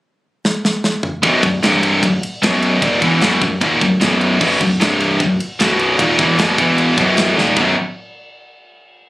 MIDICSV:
0, 0, Header, 1, 4, 480
1, 0, Start_track
1, 0, Tempo, 395517
1, 1492, Time_signature, 4, 2, 24, 8
1, 11036, End_track
2, 0, Start_track
2, 0, Title_t, "Overdriven electric guitar"
2, 0, Program_c, 0, 29
2, 1487, Note_on_c, 0, 35, 94
2, 1496, Note_on_c, 0, 42, 97
2, 1500, Note_on_c, 0, 47, 90
2, 1717, Note_off_c, 0, 42, 0
2, 1718, Note_off_c, 0, 35, 0
2, 1729, Note_off_c, 0, 47, 0
2, 1731, Note_on_c, 0, 42, 86
2, 1732, Note_on_c, 0, 35, 73
2, 1924, Note_off_c, 0, 42, 0
2, 1925, Note_off_c, 0, 35, 0
2, 1975, Note_on_c, 0, 36, 86
2, 1977, Note_on_c, 0, 43, 94
2, 1983, Note_on_c, 0, 48, 81
2, 2448, Note_off_c, 0, 36, 0
2, 2449, Note_off_c, 0, 43, 0
2, 2452, Note_off_c, 0, 48, 0
2, 2457, Note_on_c, 0, 35, 71
2, 2459, Note_on_c, 0, 42, 73
2, 2648, Note_off_c, 0, 35, 0
2, 2649, Note_off_c, 0, 42, 0
2, 2937, Note_on_c, 0, 35, 92
2, 2940, Note_on_c, 0, 42, 108
2, 2945, Note_on_c, 0, 47, 114
2, 3404, Note_off_c, 0, 35, 0
2, 3409, Note_on_c, 0, 39, 94
2, 3412, Note_off_c, 0, 42, 0
2, 3415, Note_off_c, 0, 47, 0
2, 3418, Note_on_c, 0, 46, 102
2, 3423, Note_on_c, 0, 51, 106
2, 3644, Note_off_c, 0, 39, 0
2, 3649, Note_on_c, 0, 40, 95
2, 3650, Note_off_c, 0, 46, 0
2, 3650, Note_off_c, 0, 51, 0
2, 3655, Note_on_c, 0, 47, 100
2, 3655, Note_on_c, 0, 52, 108
2, 3887, Note_off_c, 0, 40, 0
2, 3890, Note_off_c, 0, 47, 0
2, 3890, Note_off_c, 0, 52, 0
2, 3900, Note_on_c, 0, 35, 92
2, 3905, Note_on_c, 0, 42, 89
2, 3911, Note_on_c, 0, 47, 105
2, 4125, Note_off_c, 0, 35, 0
2, 4136, Note_off_c, 0, 42, 0
2, 4139, Note_off_c, 0, 47, 0
2, 4140, Note_on_c, 0, 35, 72
2, 4148, Note_on_c, 0, 42, 74
2, 4333, Note_off_c, 0, 35, 0
2, 4337, Note_off_c, 0, 42, 0
2, 4384, Note_on_c, 0, 39, 103
2, 4389, Note_on_c, 0, 46, 96
2, 4389, Note_on_c, 0, 51, 106
2, 4616, Note_off_c, 0, 39, 0
2, 4618, Note_off_c, 0, 46, 0
2, 4619, Note_off_c, 0, 51, 0
2, 4626, Note_on_c, 0, 35, 71
2, 4630, Note_on_c, 0, 42, 62
2, 4817, Note_off_c, 0, 35, 0
2, 4818, Note_off_c, 0, 42, 0
2, 4868, Note_on_c, 0, 35, 111
2, 4881, Note_on_c, 0, 42, 109
2, 4887, Note_on_c, 0, 47, 115
2, 5327, Note_off_c, 0, 35, 0
2, 5336, Note_off_c, 0, 42, 0
2, 5338, Note_off_c, 0, 47, 0
2, 5342, Note_on_c, 0, 35, 89
2, 5351, Note_on_c, 0, 42, 104
2, 5353, Note_on_c, 0, 47, 107
2, 5577, Note_off_c, 0, 35, 0
2, 5581, Note_off_c, 0, 42, 0
2, 5582, Note_off_c, 0, 47, 0
2, 5591, Note_on_c, 0, 35, 76
2, 5597, Note_on_c, 0, 42, 91
2, 5781, Note_off_c, 0, 35, 0
2, 5784, Note_off_c, 0, 42, 0
2, 5828, Note_on_c, 0, 36, 81
2, 5837, Note_on_c, 0, 43, 95
2, 5840, Note_on_c, 0, 48, 92
2, 6301, Note_off_c, 0, 36, 0
2, 6305, Note_off_c, 0, 43, 0
2, 6307, Note_off_c, 0, 48, 0
2, 6321, Note_on_c, 0, 35, 71
2, 6326, Note_on_c, 0, 42, 80
2, 6506, Note_off_c, 0, 35, 0
2, 6509, Note_off_c, 0, 42, 0
2, 6792, Note_on_c, 0, 35, 90
2, 6797, Note_on_c, 0, 42, 107
2, 6800, Note_on_c, 0, 47, 100
2, 7263, Note_off_c, 0, 35, 0
2, 7265, Note_off_c, 0, 42, 0
2, 7267, Note_off_c, 0, 47, 0
2, 7272, Note_on_c, 0, 39, 89
2, 7278, Note_on_c, 0, 46, 104
2, 7285, Note_on_c, 0, 51, 103
2, 7503, Note_off_c, 0, 39, 0
2, 7506, Note_off_c, 0, 46, 0
2, 7508, Note_on_c, 0, 40, 105
2, 7509, Note_off_c, 0, 51, 0
2, 7515, Note_on_c, 0, 47, 95
2, 7518, Note_on_c, 0, 52, 115
2, 7740, Note_off_c, 0, 40, 0
2, 7744, Note_off_c, 0, 47, 0
2, 7745, Note_off_c, 0, 52, 0
2, 7749, Note_on_c, 0, 35, 89
2, 7762, Note_on_c, 0, 42, 98
2, 7766, Note_on_c, 0, 47, 80
2, 7981, Note_off_c, 0, 35, 0
2, 7987, Note_off_c, 0, 42, 0
2, 7989, Note_off_c, 0, 47, 0
2, 7989, Note_on_c, 0, 40, 93
2, 8003, Note_on_c, 0, 47, 96
2, 8006, Note_on_c, 0, 52, 105
2, 8459, Note_off_c, 0, 40, 0
2, 8466, Note_off_c, 0, 47, 0
2, 8468, Note_off_c, 0, 52, 0
2, 8473, Note_on_c, 0, 35, 85
2, 8480, Note_on_c, 0, 42, 99
2, 8480, Note_on_c, 0, 47, 106
2, 8934, Note_off_c, 0, 35, 0
2, 8939, Note_off_c, 0, 42, 0
2, 8939, Note_off_c, 0, 47, 0
2, 8939, Note_on_c, 0, 39, 83
2, 8944, Note_on_c, 0, 46, 92
2, 8944, Note_on_c, 0, 51, 117
2, 9166, Note_off_c, 0, 39, 0
2, 9168, Note_off_c, 0, 46, 0
2, 9171, Note_on_c, 0, 35, 91
2, 9173, Note_on_c, 0, 42, 108
2, 9176, Note_off_c, 0, 51, 0
2, 9181, Note_on_c, 0, 47, 96
2, 9185, Note_on_c, 0, 54, 88
2, 9189, Note_on_c, 0, 63, 105
2, 9368, Note_off_c, 0, 35, 0
2, 9369, Note_off_c, 0, 42, 0
2, 9373, Note_off_c, 0, 47, 0
2, 9375, Note_off_c, 0, 54, 0
2, 9377, Note_off_c, 0, 63, 0
2, 11036, End_track
3, 0, Start_track
3, 0, Title_t, "Picked electric bass"
3, 0, Program_c, 1, 34
3, 1497, Note_on_c, 1, 23, 96
3, 1718, Note_off_c, 1, 23, 0
3, 1738, Note_on_c, 1, 23, 90
3, 1959, Note_off_c, 1, 23, 0
3, 1972, Note_on_c, 1, 24, 113
3, 2420, Note_off_c, 1, 24, 0
3, 2461, Note_on_c, 1, 23, 78
3, 2681, Note_off_c, 1, 23, 0
3, 2943, Note_on_c, 1, 23, 106
3, 3388, Note_off_c, 1, 23, 0
3, 3422, Note_on_c, 1, 27, 101
3, 3644, Note_off_c, 1, 27, 0
3, 3668, Note_on_c, 1, 28, 97
3, 3887, Note_off_c, 1, 28, 0
3, 3904, Note_on_c, 1, 23, 108
3, 4126, Note_off_c, 1, 23, 0
3, 4147, Note_on_c, 1, 23, 83
3, 4368, Note_off_c, 1, 23, 0
3, 4389, Note_on_c, 1, 27, 95
3, 4609, Note_off_c, 1, 27, 0
3, 4630, Note_on_c, 1, 23, 88
3, 4850, Note_off_c, 1, 23, 0
3, 4877, Note_on_c, 1, 23, 97
3, 5319, Note_off_c, 1, 23, 0
3, 5352, Note_on_c, 1, 23, 100
3, 5572, Note_off_c, 1, 23, 0
3, 5593, Note_on_c, 1, 23, 82
3, 5813, Note_off_c, 1, 23, 0
3, 5830, Note_on_c, 1, 24, 101
3, 6276, Note_off_c, 1, 24, 0
3, 6309, Note_on_c, 1, 23, 85
3, 6531, Note_off_c, 1, 23, 0
3, 6792, Note_on_c, 1, 23, 98
3, 7237, Note_off_c, 1, 23, 0
3, 7271, Note_on_c, 1, 27, 92
3, 7492, Note_off_c, 1, 27, 0
3, 7515, Note_on_c, 1, 28, 98
3, 7735, Note_off_c, 1, 28, 0
3, 7756, Note_on_c, 1, 23, 106
3, 7975, Note_off_c, 1, 23, 0
3, 7989, Note_on_c, 1, 28, 95
3, 8433, Note_off_c, 1, 28, 0
3, 8470, Note_on_c, 1, 23, 95
3, 8912, Note_off_c, 1, 23, 0
3, 8957, Note_on_c, 1, 27, 73
3, 9173, Note_off_c, 1, 27, 0
3, 9182, Note_on_c, 1, 23, 93
3, 9404, Note_off_c, 1, 23, 0
3, 11036, End_track
4, 0, Start_track
4, 0, Title_t, "Drums"
4, 546, Note_on_c, 9, 38, 69
4, 667, Note_off_c, 9, 38, 0
4, 787, Note_on_c, 9, 38, 73
4, 909, Note_off_c, 9, 38, 0
4, 1021, Note_on_c, 9, 38, 82
4, 1142, Note_off_c, 9, 38, 0
4, 1252, Note_on_c, 9, 45, 82
4, 1373, Note_off_c, 9, 45, 0
4, 1496, Note_on_c, 9, 36, 112
4, 1497, Note_on_c, 9, 51, 118
4, 1617, Note_off_c, 9, 36, 0
4, 1618, Note_off_c, 9, 51, 0
4, 1736, Note_on_c, 9, 36, 97
4, 1738, Note_on_c, 9, 51, 77
4, 1858, Note_off_c, 9, 36, 0
4, 1859, Note_off_c, 9, 51, 0
4, 1978, Note_on_c, 9, 51, 92
4, 1990, Note_on_c, 9, 38, 101
4, 2099, Note_off_c, 9, 51, 0
4, 2112, Note_off_c, 9, 38, 0
4, 2220, Note_on_c, 9, 51, 75
4, 2342, Note_off_c, 9, 51, 0
4, 2461, Note_on_c, 9, 36, 82
4, 2467, Note_on_c, 9, 51, 112
4, 2583, Note_off_c, 9, 36, 0
4, 2589, Note_off_c, 9, 51, 0
4, 2709, Note_on_c, 9, 51, 83
4, 2830, Note_off_c, 9, 51, 0
4, 2951, Note_on_c, 9, 51, 110
4, 2963, Note_on_c, 9, 38, 104
4, 3073, Note_off_c, 9, 51, 0
4, 3085, Note_off_c, 9, 38, 0
4, 3186, Note_on_c, 9, 51, 72
4, 3307, Note_off_c, 9, 51, 0
4, 3425, Note_on_c, 9, 36, 117
4, 3426, Note_on_c, 9, 51, 123
4, 3546, Note_off_c, 9, 36, 0
4, 3548, Note_off_c, 9, 51, 0
4, 3664, Note_on_c, 9, 36, 114
4, 3665, Note_on_c, 9, 51, 76
4, 3786, Note_off_c, 9, 36, 0
4, 3786, Note_off_c, 9, 51, 0
4, 3900, Note_on_c, 9, 51, 85
4, 3913, Note_on_c, 9, 38, 99
4, 4022, Note_off_c, 9, 51, 0
4, 4034, Note_off_c, 9, 38, 0
4, 4145, Note_on_c, 9, 36, 100
4, 4145, Note_on_c, 9, 51, 70
4, 4266, Note_off_c, 9, 51, 0
4, 4267, Note_off_c, 9, 36, 0
4, 4386, Note_on_c, 9, 36, 103
4, 4389, Note_on_c, 9, 51, 101
4, 4507, Note_off_c, 9, 36, 0
4, 4510, Note_off_c, 9, 51, 0
4, 4629, Note_on_c, 9, 36, 95
4, 4632, Note_on_c, 9, 51, 73
4, 4750, Note_off_c, 9, 36, 0
4, 4753, Note_off_c, 9, 51, 0
4, 4867, Note_on_c, 9, 51, 96
4, 4879, Note_on_c, 9, 38, 110
4, 4989, Note_off_c, 9, 51, 0
4, 5001, Note_off_c, 9, 38, 0
4, 5109, Note_on_c, 9, 51, 58
4, 5231, Note_off_c, 9, 51, 0
4, 5352, Note_on_c, 9, 36, 114
4, 5355, Note_on_c, 9, 49, 105
4, 5473, Note_off_c, 9, 36, 0
4, 5477, Note_off_c, 9, 49, 0
4, 5592, Note_on_c, 9, 36, 91
4, 5592, Note_on_c, 9, 51, 73
4, 5713, Note_off_c, 9, 36, 0
4, 5713, Note_off_c, 9, 51, 0
4, 5837, Note_on_c, 9, 51, 97
4, 5849, Note_on_c, 9, 38, 102
4, 5958, Note_off_c, 9, 51, 0
4, 5971, Note_off_c, 9, 38, 0
4, 6073, Note_on_c, 9, 51, 82
4, 6195, Note_off_c, 9, 51, 0
4, 6310, Note_on_c, 9, 51, 104
4, 6312, Note_on_c, 9, 36, 95
4, 6432, Note_off_c, 9, 51, 0
4, 6433, Note_off_c, 9, 36, 0
4, 6557, Note_on_c, 9, 51, 80
4, 6679, Note_off_c, 9, 51, 0
4, 6793, Note_on_c, 9, 51, 107
4, 6805, Note_on_c, 9, 38, 106
4, 6914, Note_off_c, 9, 51, 0
4, 6927, Note_off_c, 9, 38, 0
4, 7031, Note_on_c, 9, 51, 70
4, 7153, Note_off_c, 9, 51, 0
4, 7271, Note_on_c, 9, 36, 119
4, 7277, Note_on_c, 9, 51, 118
4, 7393, Note_off_c, 9, 36, 0
4, 7399, Note_off_c, 9, 51, 0
4, 7511, Note_on_c, 9, 36, 118
4, 7513, Note_on_c, 9, 51, 72
4, 7632, Note_off_c, 9, 36, 0
4, 7634, Note_off_c, 9, 51, 0
4, 7750, Note_on_c, 9, 51, 95
4, 7762, Note_on_c, 9, 38, 105
4, 7872, Note_off_c, 9, 51, 0
4, 7884, Note_off_c, 9, 38, 0
4, 7990, Note_on_c, 9, 36, 120
4, 7994, Note_on_c, 9, 51, 79
4, 8111, Note_off_c, 9, 36, 0
4, 8116, Note_off_c, 9, 51, 0
4, 8228, Note_on_c, 9, 51, 96
4, 8349, Note_off_c, 9, 51, 0
4, 8467, Note_on_c, 9, 51, 70
4, 8468, Note_on_c, 9, 36, 104
4, 8589, Note_off_c, 9, 36, 0
4, 8589, Note_off_c, 9, 51, 0
4, 8702, Note_on_c, 9, 51, 96
4, 8714, Note_on_c, 9, 38, 110
4, 8823, Note_off_c, 9, 51, 0
4, 8835, Note_off_c, 9, 38, 0
4, 8957, Note_on_c, 9, 38, 55
4, 9079, Note_off_c, 9, 38, 0
4, 9183, Note_on_c, 9, 36, 113
4, 9305, Note_off_c, 9, 36, 0
4, 11036, End_track
0, 0, End_of_file